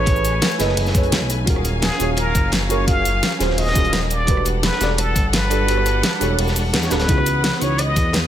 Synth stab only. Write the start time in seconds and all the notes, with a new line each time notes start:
Already playing: A3 E4 G#4 A4 B4 C#5 E5 G#5
0.04 E4 G#4 A4 B4
0.10 C#5
0.58 E4 G#4 A4 B4 D#5
0.92 E4 G#4 A4 B4
0.97 C#5
1.45 C#4 F4 F#4 G#4
1.50 A#4
1.97 C#4 F4 F#4 G#4
2.02 C#5
2.69 C#4 F4 F#4 G#4 A#4
2.85 C#4 F4 F#4 G#4
2.90 A#4
3.39 C#4 F4 F#4 G#4 C5
3.73 C#4 F4 F#4 G#4
3.78 A#4
4.25 D4 F#4 G4 A4
4.30 B4
4.78 D4 F#4 G4 A4
4.83 D5
5.49 D4 F#4 G4 A4 B4
5.66 D4 F#4 G4 A4
5.71 B4
6.20 D4 F#4 G4 A4 C#5
6.90 D4 F#4 G4 A4 B4
7.06 B3 D#4 E4 F#4
7.11 G#4
7.59 B3 D#4 E4 F#4
7.64 C#5